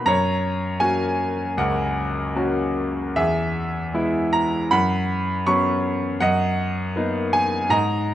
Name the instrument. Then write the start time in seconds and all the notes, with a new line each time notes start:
grand piano
0.06 F#2 C#5 A#5
0.80 A#3 C#4 F#4 G#5
1.57 C#2 A#4 F#5
2.36 A#3 C#4 F#4
3.16 E2 G#4 E5
3.94 G#3 B3 E4
4.33 A#5
4.71 F#2 F#5 B5
5.47 F#3 B3 C#4 C#6
6.20 F#2 D#5 F#5
6.96 A#3 B3 D#4
7.33 G#5
7.69 G#2 D#5 A#5